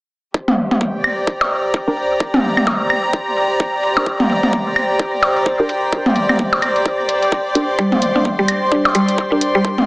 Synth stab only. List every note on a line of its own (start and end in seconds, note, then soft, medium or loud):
1.88 1.93 D4 medium
1.88 1.93 G4 medium
1.88 1.93 A#4 loud
3.97 4.02 D4 medium
3.97 4.02 G4 medium
3.97 4.02 A#4 medium
5.60 5.65 D4 medium
5.60 5.65 G4 medium
5.60 5.65 A#4 loud
7.55 7.63 D4 medium
7.55 7.63 G4 medium
7.55 7.63 A#4 loud
9.32 9.37 D4 medium
9.32 9.37 G4 medium
9.32 9.37 A#4 loud